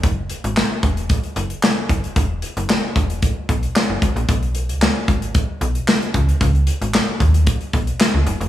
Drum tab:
HH |x-xx--xxxxxx--xx|x-xx--xxx-xx--xx|xxxx--xxx-xx-xxx|xxxx--xxxxxx--xx|
CP |----x-------x---|----x-------x---|----x-------x---|----x-------x---|
SD |----o-------o---|----o-------o---|----o-------o---|----o-------o---|
BD |o-----o-o-----o-|o-----o-o-o---o-|o-----o-o-----o-|o-----o-o-o-----|